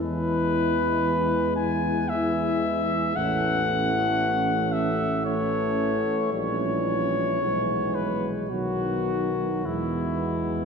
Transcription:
0.02 E2 E3 G#3 E4 B4
1.56 G#5
2.09 E3 G#3 E4 E5
3.16 A1 E3 A3 C#4 F#5
4.73 E5
5.25 E3 A3 C#4 C#5
6.32 A#1 E3 G3 C#4 C#5
7.41 B1 E3 G#3 B3
7.95 B4
8.50 B1 D#3 F#3 B3 F#4
9.65 E2 E3 G#3 B3 E4

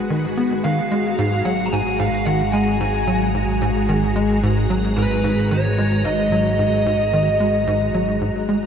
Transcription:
Already playing: G#1 G#3 F#4 B4
0.10 D#3
0.37 B3
0.64 G#1 D#3 F5 A#5
0.92 G#3
1.18 G#2
1.45 F#3 F#5
1.66 A#5
1.72 G#2 G#5
1.99 G#2 F5
2.26 D#3 F#5
2.53 G#3 G#5
2.81 G#2
3.07 F#3
3.35 G#2
3.62 G#2
3.89 D#3
4.16 G#3
4.43 G#2
4.70 F#3
4.97 G#2 B4
5.24 G#2
5.51 D#3 C#5
5.78 G#3
6.05 G#2 D#5
6.32 F#3
6.59 G#2
6.86 G#2
7.13 D#3
7.40 G#3
7.67 G#2
7.94 F#3
8.21 G#2
8.49 G#3

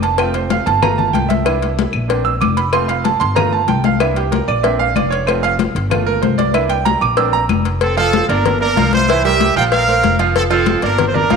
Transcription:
Already playing: F1 A#3 C4 D4
0.02 A5, cowbell, high conga
0.18 A3 C4 F4 G5, cowbell, high conga, claves
0.34 C5, cowbell, high conga
0.50 F5, cowbell, high conga
0.66 G1 A5, cowbell, high conga
0.82 A3 A#3 F4 A#5, cowbell, high conga, low conga, claves
0.98 A5, high conga, low conga
1.13 C2 G5, cowbell, high conga
1.29 E5, cowbell, high conga
1.45 A#3 D4 E4, cowbell, high conga, claves
1.62 cowbell, high conga
1.79 cowbell, high conga
1.93 A#1, claves
2.08 A#3 C4 D4, cowbell, high conga
2.25 E6, high conga
2.41 F1 D6, cowbell, high conga, claves
2.57 B5, cowbell, high conga
2.72 A3 C4 F4 C6, cowbell, high conga, claves
2.88 F5, cowbell, high conga
3.04 A5, cowbell, high conga
3.20 G1 C6, cowbell, high conga
3.35 A3 A#3 F4 A#5, cowbell, high conga, low conga, claves
3.53 A5, high conga
3.68 C2 G5, cowbell, high conga
3.84 F5, cowbell, high conga
4.00 A#3 D4 E4 E5, cowbell, high conga, claves
4.16 G4, cowbell, high conga
4.32 A#4, cowbell, high conga
4.48 A#1 D5, claves
4.63 A#3 C4 D4 E5, cowbell, high conga
4.79 F5, high conga
4.96 F1 D5, cowbell, high conga, claves
5.11 C#5, cowbell, high conga
5.26 A3 C4 F4 C5, cowbell, high conga, claves
5.43 F5, cowbell, high conga
5.59 cowbell, high conga
5.75 G1, cowbell, high conga
5.90 A3 A#3 F4, cowbell, high conga, low conga, claves
6.07 A#4, high conga
6.22 C2 C5, cowbell, high conga
6.38 D5, cowbell, high conga
6.53 A#3 D4 E4 E5, cowbell, high conga, claves
6.69 G5, cowbell, high conga
6.85 A#5, cowbell, high conga
7.01 A#1 D6, claves
7.17 A#3 C4 D4 E6, cowbell, high conga
7.33 A#5, high conga
7.49 F1, cowbell, high conga, claves
7.65 cowbell, high conga
7.81 C4 A4, cowbell, high conga
7.97 F3 C4 F4 A4 F5, cowbell, high conga
8.13 cowbell, high conga
8.29 G1 A#3 D4 A#4 D5, cowbell, high conga
8.45 cowbell, high conga, low conga
8.61 A#3 D4 A#4 D5, high conga
8.76 C2 F3 F4 F5, cowbell, high conga
8.93 E4 C5, cowbell, high conga
9.09 E3 E4 E5, cowbell, high conga
9.24 G3 G4 A#4 E5, cowbell, high conga
9.40 cowbell, high conga
9.56 A#1 F3 F4 A#4 F5 G5
9.72 A#4 F5, cowbell, high conga
9.88 A#3 A#4 C5, high conga
10.04 F1, cowbell, high conga
10.19 F3 F4 F5, cowbell, high conga
10.36 C4 A4, cowbell, high conga
10.50 F3 C4 F4 A4 F5, cowbell, high conga
10.66 cowbell, high conga
10.82 G1 A#3 D4 A#4 D5, cowbell, high conga
10.98 cowbell, high conga, low conga
11.07 C5
11.14 A#3 D4 A#4 D5, high conga, low conga
11.30 C2 F3 F4 F5, cowbell, high conga

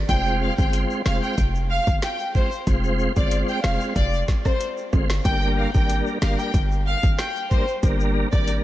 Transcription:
0.09 F1 G#3 C4 F4 C5 G5, kick, closed hi-hat, shaker
0.26 shaker
0.41 F5
0.58 G1 G#3 C4 F4 C5 G5, kick, shaker
0.73 closed hi-hat, shaker
0.91 shaker
1.05 F1 G#3 C4 F4 C5 F5, finger snap, snare, shaker
1.23 G5, shaker
1.38 F1, kick, closed hi-hat, shaker
1.55 shaker
1.70 F5
1.87 G1, kick, shaker
2.02 G5, finger snap, snare, closed hi-hat, shaker
2.20 shaker
2.34 G#3 C4 F4 C5, kick, shaker
2.52 shaker
2.67 F1 G#3 C4 F4 C5, kick, closed hi-hat, shaker
2.84 shaker
2.99 shaker
3.16 G1 G#3 C4 F4 C5 D5, kick, shaker
3.31 closed hi-hat, shaker
3.48 G5, shaker
3.64 F1 G#3 C4 F4 C5 F5, finger snap, snare
3.81 shaker
3.96 F1 D5, kick, closed hi-hat, shaker
4.13 shaker
4.28 kick, snare, shaker
4.45 C5, kick, cross-stick, high timbale, shaker
4.60 closed hi-hat, shaker
4.78 shaker
4.93 G1 G#3 C4 F4 C5, kick, high timbale, shaker
5.10 finger snap, snare, shaker
5.25 G1 G3 A#3 D4 A#4 G5, kick, closed hi-hat, shaker
5.42 shaker
5.57 F5
5.74 G#1 G3 A#3 D4 A#4 G5, kick, shaker
5.89 closed hi-hat, shaker
6.07 shaker
6.22 G1 G3 A#3 D4 A#4 F5, finger snap, snare, shaker
6.39 G5, shaker
6.54 G1, kick, closed hi-hat, shaker
6.71 shaker
6.86 F5
7.03 G#1, kick, shaker
7.19 G5, finger snap, snare, closed hi-hat, shaker
7.36 shaker
7.51 G3 A#3 D4 A#4 C5, kick, shaker
7.68 shaker
7.83 G1 G3 A#3 D4 A#4, kick, closed hi-hat, shaker
8.00 shaker
8.32 G#1 G3 A#3 D4 A#4 D5, kick, shaker
8.47 closed hi-hat, shaker

